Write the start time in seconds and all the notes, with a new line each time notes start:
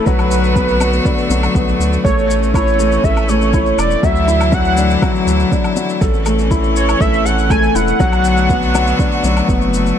Already playing: A3
0.05 B1 D3 F#3 B3 F#4 B4, kick, shaker
0.19 low woodblock, shaker
0.31 shaker
0.44 shaker
0.56 B3, kick, shaker
0.68 shaker
0.81 F#3, low woodblock, shaker
0.93 shaker
1.05 D4, kick, shaker
1.18 shaker
1.30 B1 F#3, shaker
1.43 low woodblock, shaker
1.55 B1 B3, kick, shaker
1.68 shaker
1.80 D2, shaker
1.93 shaker
2.03 A1 E3 A3 C#4 C#5, kick, shaker
2.19 shaker
2.31 shaker
2.43 shaker
2.54 E4 C#5, kick, low woodblock, shaker
2.67 shaker
2.79 A3, shaker
2.92 shaker
3.04 A1 A4 E5, kick, shaker
3.17 low woodblock, shaker
3.29 A3 C#5, shaker
3.42 shaker
3.54 E4, kick, shaker
3.66 shaker
3.78 E1 D5, low woodblock, shaker
3.91 shaker
4.01 D2 D3 E3 F#3 E4 E5, kick, shaker
4.16 shaker
4.28 E4, shaker
4.41 low woodblock, shaker
4.52 F#3 F#5, kick, shaker
4.65 shaker
4.77 D4, shaker
4.90 shaker
5.02 F#3, kick, low woodblock, shaker
5.16 shaker
5.27 D2, shaker
5.40 shaker
5.52 D4, kick, shaker
5.64 low woodblock, shaker
5.76 F#3, shaker
5.89 shaker
6.01 A1 E3 C#4 A4, kick, shaker
6.14 shaker
6.26 A3, low woodblock, shaker
6.39 shaker
6.51 E4, kick, shaker
6.64 shaker
6.76 C#5, shaker
6.89 low woodblock, shaker
7.00 A1 A3 E5, kick, shaker
7.14 shaker
7.25 A4 F#5, shaker
7.39 shaker
7.50 A3 G#5, kick, low woodblock, shaker
7.63 shaker
7.75 E1 E4 F#5, shaker
7.88 shaker
7.98 B1 D3 F#3 A3 B3 F#4, kick, shaker
8.13 low woodblock, shaker
8.24 shaker
8.37 shaker
8.50 B3, kick, shaker
8.62 shaker
8.75 F#3, low woodblock, shaker
8.87 shaker
8.99 D4, kick, shaker
9.12 shaker
9.24 B1 F#3, shaker
9.37 low woodblock, shaker
9.49 F#1 B3, kick, shaker
9.62 shaker
9.74 shaker
9.86 shaker